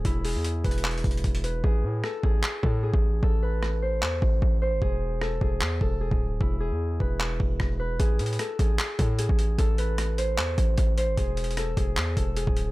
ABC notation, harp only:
X:1
M:4/4
L:1/8
Q:1/4=151
K:Am
V:1 name="Harp"
E ^G2 B4 B | ^G2 A G2 A G z | A B2 c4 c | ^G2 A G2 A G z |
E ^G2 B4 B | ^G2 A G2 A G z | A B2 c4 c | ^G2 A G2 A G z |]